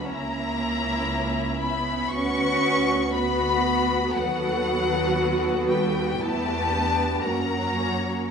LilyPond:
<<
  \new Staff \with { instrumentName = "Violin section" } { \time 4/4 \key b \minor \tempo 4 = 58 ais''4. b''8 cis'''4 b''4 | fis''4. g''8 a''4 ais''4 | }
  \new Staff \with { instrumentName = "Violin section" } { \time 4/4 \key b \minor << { e''2 b'4 b'4 | b'2 b'4 ais'8 cis''8 | } \\ { e'2 fis'4 fis'4 | a'2 g'4 fis'4 | } >> }
  \new Staff \with { instrumentName = "Viola section" } { \time 4/4 \key b \minor << { cis'2 fis'4 fis'4 | fis'2 e'8 d'8 cis'4 | } \\ { cis'2 b4 b4 | b2 b4 fis4 | } >> }
  \new Staff \with { instrumentName = "Cello section" } { \time 4/4 \key b \minor ais4. b8 cis'4 b4 | fis4. g8 a4 ais4 | }
  \new Staff \with { instrumentName = "Double bass section" } { \clef bass \time 4/4 \key b \minor cis,2 d,2 | dis,2 e,4 fis,4 | }
>>